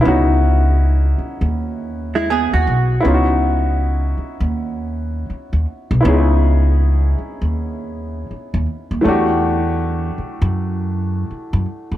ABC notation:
X:1
M:4/4
L:1/16
Q:"Swing 16ths" 1/4=80
K:C#m
V:1 name="Hollow-body jazz guitar"
z8 z3 [G,E] [B,G] F3 | z16 | z16 | z16 |]
V:2 name="Upright piano"
[B,CDEF]16 | [B,CDE^EF]16 | [B,CDEG]16 | [E,F,A,=DF=G]16 |]
V:3 name="Upright bass" clef=bass
C,,6 z D,,6 D,, B,,,2 | C,,6 z D,,4- D,, z D,, z B,,, | C,,6 z D,,4- D,, z D,, z D,, | E,,6 z F,,4- F,, z F,, z =D,, |]